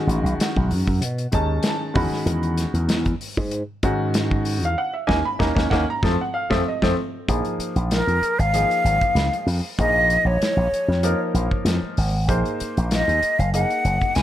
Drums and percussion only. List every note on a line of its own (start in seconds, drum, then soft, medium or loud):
0.09 closed hi-hat medium
0.26 closed hi-hat soft
0.40 snare loud
0.40 closed hi-hat medium
0.56 kick medium
0.71 open hi-hat medium
0.87 kick medium
1.02 closed hi-hat medium
1.18 closed hi-hat soft
1.32 kick medium
1.32 closed hi-hat medium
1.63 snare loud
1.63 closed hi-hat medium
1.95 kick loud
1.95 open hi-hat medium
2.13 snare soft
2.27 closed hi-hat medium
2.43 closed hi-hat soft
2.58 snare soft
2.58 closed hi-hat medium
2.75 closed hi-hat soft
2.89 snare loud
2.89 closed hi-hat medium
3.06 kick medium
3.06 closed hi-hat soft
3.21 open hi-hat medium
3.37 kick medium
3.51 closed hi-hat medium
3.83 kick medium
3.83 closed hi-hat medium
4.14 snare loud
4.14 closed hi-hat medium
4.31 kick medium
4.45 open hi-hat medium
4.63 closed hi-hat soft
5.09 kick medium
5.09 snare medium
5.40 kick medium
5.40 snare medium
5.57 kick medium
5.57 snare medium
5.71 kick medium
5.71 snare medium
6.03 kick loud
6.03 snare medium
6.51 kick medium
6.51 snare medium
6.82 kick medium
6.82 snare medium
7.29 kick loud
7.29 closed hi-hat medium
7.45 closed hi-hat soft
7.60 closed hi-hat medium
7.76 closed hi-hat soft
7.91 snare medium
7.91 closed hi-hat medium
8.08 closed hi-hat soft
8.23 closed hi-hat medium
8.40 closed hi-hat soft
8.54 closed hi-hat medium
8.71 closed hi-hat soft
8.86 closed hi-hat medium
9.01 kick medium
9.01 closed hi-hat soft
9.16 snare loud
9.16 closed hi-hat medium
9.33 closed hi-hat soft
9.48 open hi-hat medium
9.79 kick loud
9.79 closed hi-hat medium
10.10 closed hi-hat medium
10.42 snare loud
10.42 closed hi-hat medium
10.74 closed hi-hat medium
10.91 snare soft
11.03 closed hi-hat medium
11.35 closed hi-hat medium
11.51 kick medium
11.66 snare loud
11.66 closed hi-hat medium
11.97 open hi-hat medium
12.29 kick loud
12.29 closed hi-hat medium
12.45 closed hi-hat soft
12.60 closed hi-hat medium
12.77 closed hi-hat soft
12.91 snare loud
12.91 closed hi-hat medium
13.09 closed hi-hat soft
13.23 closed hi-hat medium
13.40 closed hi-hat soft
13.54 closed hi-hat medium
13.70 closed hi-hat soft
13.85 closed hi-hat medium
14.01 kick medium
14.01 closed hi-hat soft
14.15 snare loud
14.15 closed hi-hat medium